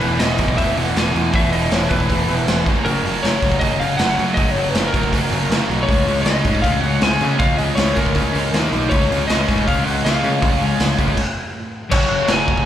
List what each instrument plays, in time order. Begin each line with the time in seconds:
Already playing: lead electric guitar B4
0.01 picked electric bass E1, distorted electric guitar E2 B2 E3, open hi-hat
0.19 picked electric bass E1, distorted electric guitar E2 B2 E3, lead electric guitar D#5, snare, open hi-hat
0.38 picked electric bass B1, distorted electric guitar E2 B2 E3, kick, open hi-hat
0.48 kick
0.57 picked electric bass E1, distorted electric guitar E2 B2 E3, lead electric guitar E5, kick, open hi-hat
0.77 picked electric bass E1, distorted electric guitar E2 B2 E3, lead electric guitar F#5, open hi-hat
0.95 picked electric bass E1, distorted electric guitar E2 B2 E3, lead electric guitar G#5, snare, open hi-hat
1.14 picked electric bass E2, distorted electric guitar E2 B2 E3, open hi-hat
1.33 picked electric bass E1, distorted electric guitar E2 B2 E3, lead electric guitar E5, kick, open hi-hat
1.52 distorted electric guitar E2 B2 E3, lead electric guitar D#5, open hi-hat
1.70 picked electric bass E1, distorted electric guitar E2 B2, lead electric guitar C#5, snare, open hi-hat
1.74 distorted electric guitar E3
1.89 picked electric bass E1, distorted electric guitar E2 B2 E3, lead electric guitar B4, kick, open hi-hat
2.00 kick
2.10 picked electric bass E1, distorted electric guitar E2 B2 E3, kick, open hi-hat
2.28 picked electric bass E1, distorted electric guitar E2 B2 E3, open hi-hat
2.47 picked electric bass E1, distorted electric guitar E2 B2 E3, snare, open hi-hat
2.66 picked electric bass F#1, distorted electric guitar F#2 C#3 F#3, kick, open hi-hat
2.85 picked electric bass F#1, distorted electric guitar F#2 C#3 F#3, lead electric guitar A#4, open hi-hat
3.04 picked electric bass F#1, distorted electric guitar F#2 C#3 F#3, open hi-hat
3.23 picked electric bass F#1, distorted electric guitar F#2 C#3 F#3, lead electric guitar C#5, snare, open hi-hat
3.42 picked electric bass C#2, distorted electric guitar F#2 C#3 F#3, kick, open hi-hat
3.52 kick
3.59 picked electric bass F#1, distorted electric guitar F#2 C#3 F#3, lead electric guitar D#5, kick, open hi-hat
3.79 picked electric bass F#1, distorted electric guitar F#2 C#3 F#3, lead electric guitar F5, open hi-hat
3.97 picked electric bass F#1, distorted electric guitar F#2 C#3 F#3, lead electric guitar F#5, snare, open hi-hat
4.17 distorted electric guitar F#2 C#3 F#3, picked electric bass F#2, open hi-hat
4.34 picked electric bass F#1, distorted electric guitar F#2, lead electric guitar D#5, kick, open hi-hat
4.38 distorted electric guitar C#3 F#3
4.51 lead electric guitar C#5
4.56 distorted electric guitar F#2 C#3 F#3, open hi-hat
4.69 lead electric guitar B4
4.74 picked electric bass F#1, distorted electric guitar F#2 C#3 F#3, snare, open hi-hat
4.88 lead electric guitar A#4
4.94 picked electric bass F#1, distorted electric guitar F#2 C#3 F#3, kick, open hi-hat
5.03 kick
5.12 picked electric bass F#1, distorted electric guitar F#2 C#3 F#3, kick, open hi-hat
5.31 picked electric bass F#1, distorted electric guitar F#2 C#3 F#3, open hi-hat
5.50 picked electric bass F#1, distorted electric guitar F#2 C#3 F#3, snare, open hi-hat
5.68 picked electric bass B1, distorted electric guitar F#2 C#3 F#3, open hi-hat
5.83 lead electric guitar C#5
5.89 picked electric bass C#2, distorted electric guitar C#3 G#3 C#4, kick, open hi-hat
6.06 picked electric bass C#2, distorted electric guitar C#3 G#3 C#4, open hi-hat
6.22 picked electric bass C#2, lead electric guitar D#5, open hi-hat
6.26 distorted electric guitar C#3 G#3 C#4, snare
6.44 picked electric bass G#2, distorted electric guitar C#3 G#3 C#4, kick, open hi-hat
6.55 kick
6.62 picked electric bass C#2, distorted electric guitar C#3 G#3 C#4, lead electric guitar F5, kick, open hi-hat
6.81 picked electric bass C#2, distorted electric guitar C#3 G#3 C#4, lead electric guitar F#5, open hi-hat
7.01 picked electric bass C#2, distorted electric guitar C#3 G#3 C#4, lead electric guitar G#5, snare, open hi-hat
7.21 picked electric bass C#3, distorted electric guitar C#3 G#3 C#4, open hi-hat
7.39 picked electric bass C#2, distorted electric guitar C#3 G#3 C#4, lead electric guitar F5, kick, open hi-hat
7.57 distorted electric guitar C#3 G#3 C#4, lead electric guitar D#5, open hi-hat
7.75 picked electric bass C#2, distorted electric guitar C#3 G#3 C#4, lead electric guitar C#5, snare, open hi-hat
7.95 picked electric bass C#2, distorted electric guitar C#3 G#3 C#4, lead electric guitar A#4, kick, open hi-hat
8.06 kick
8.15 picked electric bass C#2, distorted electric guitar C#3 G#3 C#4, kick, open hi-hat
8.32 picked electric bass C#2, overdriven electric guitar C#3 C#4, open hi-hat
8.36 distorted electric guitar C#3 G#3 C#4
8.54 picked electric bass D#2, distorted electric guitar D#3 A#3 D#4, snare, open hi-hat
8.72 picked electric bass B1, distorted electric guitar D#3 A#3 D#4, open hi-hat
8.90 picked electric bass C#2, distorted electric guitar C#3 G#3 C#4, lead electric guitar C#5, kick, open hi-hat
9.10 picked electric bass C#2, distorted electric guitar C#3 G#3 C#4, open hi-hat
9.27 picked electric bass C#2, distorted electric guitar C#3 G#3 C#4, lead electric guitar D#5, snare, open hi-hat
9.49 picked electric bass G#2, distorted electric guitar C#3 G#3 C#4, kick, open hi-hat
9.58 kick
9.67 picked electric bass C#2, distorted electric guitar C#3 G#3 C#4, lead electric guitar F5, kick, open hi-hat
9.84 picked electric bass C#2, distorted electric guitar C#3 G#3 C#4, lead electric guitar F#5, open hi-hat
10.05 picked electric bass C#2, distorted electric guitar C#3 G#3 C#4, lead electric guitar F5, snare, open hi-hat
10.24 picked electric bass C#3, distorted electric guitar C#3 G#3 C#4, open hi-hat
10.42 picked electric bass C#2, distorted electric guitar C#3 G#3 C#4, kick, open hi-hat
10.62 distorted electric guitar C#3 G#3 C#4, open hi-hat
10.80 picked electric bass C#2, distorted electric guitar C#3 G#3 C#4, snare, open hi-hat
10.98 picked electric bass C#2, distorted electric guitar C#3 G#3 C#4, kick, open hi-hat
11.08 kick
11.17 kick, crash
11.91 picked electric bass F#1, distorted electric guitar F#2 C#3 F#3, lead electric guitar C#5, kick, crash
12.28 picked electric bass F#1, snare, crash
12.32 lead electric guitar G#5
12.48 picked electric bass F#1, kick
12.57 kick